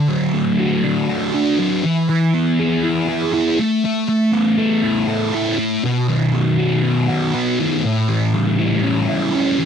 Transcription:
0.00 1.08 D3 medium
0.08 1.33 F#3 medium
0.33 1.58 A3 medium
0.59 1.08 F#4 medium
0.84 1.33 D4 medium
1.09 1.84 F#4 medium
1.34 1.84 D4 medium
1.59 1.83 F#3 medium
1.84 2.08 E3 medium
2.09 3.34 E3 medium
2.34 3.62 B3 medium
2.59 3.07 G#4 medium
2.83 3.32 E4 medium
3.08 3.58 G#4 medium
3.33 3.58 E4 medium
3.59 3.83 A3 medium
3.84 4.07 A3 medium
4.08 5.33 A3 medium
4.33 5.58 B3 medium
4.58 5.06 A4 medium
4.82 5.32 E4 medium
5.07 5.83 A4 medium
5.33 5.83 E4 medium
5.58 5.83 A3 medium
5.83 7.08 B2 medium
6.08 7.33 D#3 medium
6.33 7.58 F#3 medium
6.58 7.07 F#4 medium
6.83 7.33 B3 medium
7.08 7.83 F#4 medium
7.34 7.83 B3 medium
7.59 7.83 D#3 medium
7.83 9.08 A2 medium
8.08 9.33 E3 medium
8.33 9.58 G3 medium
8.58 9.07 E4 medium
8.84 9.33 C#4 medium
9.08 9.65 E4 medium
9.34 9.65 C#4 medium
9.59 9.65 E3 medium

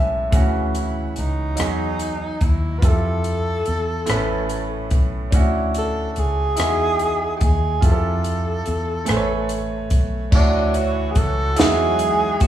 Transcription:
0.00 0.29 B1 medium
0.00 0.31 A2 medium
0.00 0.32 G#3 medium
0.00 0.30 C#4 medium
0.00 0.34 B4 medium
0.00 0.30 E5 medium
0.00 0.35 G#5 medium
0.00 0.34 A5 medium
0.31 1.12 D2 medium
0.31 1.57 C#3 medium
0.31 1.58 E3 medium
0.31 1.57 C#4 soft
0.31 kick loud
0.31 closed hi-hat medium
0.35 1.57 F#4 medium
0.75 1.21 E4 medium
0.75 closed hi-hat soft
1.16 1.55 C#2 medium
1.16 2.46 D#4 medium
1.16 closed hi-hat soft
1.55 2.81 F#3 medium
1.55 2.83 F#4 medium
1.55 2.82 D#5 medium
1.55 closed hi-hat medium
1.59 2.38 E2 medium
1.59 2.83 G#4 medium
1.59 cross-stick medium
1.99 closed hi-hat soft
2.41 2.79 D#2 medium
2.41 2.80 E4 medium
2.41 kick medium
2.41 closed hi-hat soft
2.79 4.07 E4 soft
2.79 4.06 F4 soft
2.79 2.88 B4 medium
2.79 kick loud
2.79 closed hi-hat medium
2.83 3.62 F2 medium
2.83 4.08 G4 soft
2.83 4.09 A4 medium
2.83 4.93 A4 loud
3.24 closed hi-hat soft
3.66 4.04 E2 medium
3.66 closed hi-hat soft
4.06 4.88 A1 medium
4.06 5.32 A2 medium
4.06 5.32 A3 medium
4.06 5.31 C#4 medium
4.06 cross-stick loud
4.06 closed hi-hat medium
4.10 5.34 B4 medium
4.49 closed hi-hat soft
4.90 5.29 B1 medium
4.90 kick medium
4.90 closed hi-hat soft
5.31 6.12 D2 medium
5.31 6.57 C#4 medium
5.31 6.57 D4 medium
5.31 6.54 E4 medium
5.31 kick loud
5.31 closed hi-hat medium
5.35 6.57 F#4 medium
5.74 6.12 A4 medium
5.74 closed hi-hat soft
6.12 6.21 A4 medium
6.12 closed hi-hat soft
6.17 6.54 C#2 medium
6.17 7.36 G#4 loud
6.56 7.38 E2 medium
6.56 7.82 D#4 medium
6.56 7.81 E4 medium
6.56 7.83 F#4 soft
6.56 cross-stick loud
6.56 closed hi-hat medium
6.60 7.84 G#4 medium
6.99 closed hi-hat soft
7.37 7.45 G4 medium
7.41 7.79 D#2 medium
7.41 7.87 G#4 medium
7.41 kick medium
7.41 closed hi-hat soft
7.81 8.62 F2 loud
7.81 9.07 E4 soft
7.81 9.07 F4 medium
7.81 9.08 G4 soft
7.81 kick medium
7.81 closed hi-hat medium
7.85 7.90 G#4 soft
7.85 9.92 A4 medium
7.92 9.12 A4 medium
8.24 closed hi-hat soft
8.66 9.04 E2 medium
8.66 closed hi-hat soft
9.05 9.88 A1 medium
9.05 10.31 A3 medium
9.05 10.33 B4 medium
9.05 10.32 G#5 medium
9.05 cross-stick medium
9.05 closed hi-hat medium
9.10 9.15 C5 medium
9.16 10.31 C#5 medium
9.49 closed hi-hat soft
9.90 10.29 B1 medium
9.90 kick medium
9.90 closed hi-hat soft
10.31 11.12 D2 medium
10.31 11.56 E3 medium
10.31 11.57 D4 medium
10.31 11.55 E4 soft
10.31 12.47 F#4 medium
10.31 11.56 C#5 medium
10.31 11.57 C#5 soft
10.31 kick loud
10.31 crash medium
10.35 10.78 D4 loud
10.35 11.57 F#4 medium
10.74 11.13 F#4 medium
10.74 closed hi-hat medium
11.11 11.19 G#4 medium
11.11 closed hi-hat soft
11.16 11.54 C#2 medium
11.16 11.60 A4 loud
11.16 kick medium
11.56 12.38 E2 loud
11.56 12.47 F#3 medium
11.56 12.47 G#3 medium
11.56 12.47 D#4 medium
11.56 12.47 E4 medium
11.56 12.47 F#4 medium
11.56 12.43 G#4 loud
11.56 snare loud
11.56 closed hi-hat medium
11.60 12.47 G#4 medium
11.99 closed hi-hat medium
12.40 12.47 D#2 medium
12.40 12.47 F#4 medium
12.40 kick medium
12.40 closed hi-hat soft

